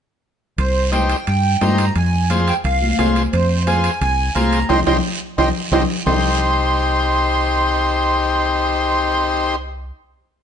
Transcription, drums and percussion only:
0.58 high conga, high timbale, long guiro
0.93 high conga, high timbale, short guiro
1.10 high timbale, short guiro
1.27 high conga, high timbale, long guiro
1.61 high conga, high timbale, low timbale, short guiro
1.78 high timbale, short guiro
1.96 high conga, high timbale, long guiro
2.30 high conga, high timbale, short guiro
2.47 high timbale, short guiro
2.64 high conga, high timbale, long guiro
2.82 high conga
2.99 high conga, high timbale, low timbale, short guiro
3.16 high timbale, short guiro
3.33 high timbale, long guiro
3.67 high conga, high timbale, short guiro
3.84 high timbale, short guiro
4.01 high conga, high timbale, long guiro
4.35 high conga, high timbale, short guiro
4.53 high timbale, short guiro
4.70 low conga, high timbale, long guiro
4.87 low conga, high timbale, long guiro
5.38 low conga, high timbale, long guiro
5.72 low conga, high timbale, long guiro
6.06 low conga, low timbale, long guiro

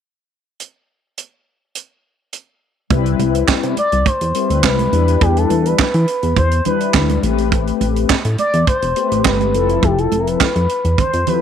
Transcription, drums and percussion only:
0.60 closed hi-hat
1.18 closed hi-hat
1.75 closed hi-hat
2.33 closed hi-hat
2.90 kick, closed hi-hat, muted conga
3.06 closed hi-hat
3.20 closed hi-hat, muted conga
3.35 closed hi-hat
3.48 kick, snare, clap, high conga
3.63 closed hi-hat
3.77 closed hi-hat, muted conga
3.92 closed hi-hat
4.06 kick, closed hi-hat, muted conga
4.21 closed hi-hat
4.35 closed hi-hat
4.50 closed hi-hat
4.64 kick, snare, clap, high conga
4.79 closed hi-hat, high conga
4.93 closed hi-hat
5.08 closed hi-hat
5.21 kick, closed hi-hat, muted conga
5.37 closed hi-hat
5.50 closed hi-hat, muted conga
5.66 closed hi-hat
5.79 kick, snare, clap, high conga
5.94 closed hi-hat
6.08 closed hi-hat
6.23 closed hi-hat
6.37 kick, closed hi-hat, muted conga, low conga
6.51 closed hi-hat
6.65 closed hi-hat, low conga
6.81 closed hi-hat
6.94 kick, snare, clap, high conga
7.09 closed hi-hat, high conga
7.23 closed hi-hat
7.38 closed hi-hat
7.52 kick, closed hi-hat, muted conga
7.67 closed hi-hat
7.81 closed hi-hat, muted conga
7.96 closed hi-hat
8.10 kick, snare, clap, high conga
8.25 closed hi-hat
8.38 closed hi-hat, muted conga
8.53 closed hi-hat
8.67 kick, closed hi-hat, muted conga
8.82 closed hi-hat
8.96 closed hi-hat
9.12 closed hi-hat
9.25 kick, snare, clap, high conga
9.40 closed hi-hat, high conga
9.54 closed hi-hat
9.69 closed hi-hat
9.83 kick, closed hi-hat, muted conga
9.98 closed hi-hat
10.12 closed hi-hat, muted conga
10.27 closed hi-hat
10.41 kick, snare, clap, high conga
10.56 closed hi-hat
10.69 closed hi-hat
10.85 closed hi-hat
10.98 kick, closed hi-hat, muted conga, low conga
11.13 closed hi-hat
11.27 closed hi-hat, low conga

